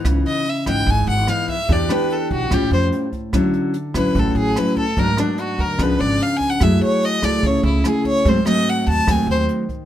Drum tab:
HH |xxxxxxxx|x-xxxxxx|xxxxxxxx|x-xxxxxx|
SD |r--r--r-|-r--r---|r--r--r-|-r--r---|
BD |o--oo--o|o--oo--o|o--oo--o|o--oo--o|

HH |xxxxxxxx|xxxxxxxx|
SD |r--r--r-|-r--r---|
BD |o--oo--o|o--oo--o|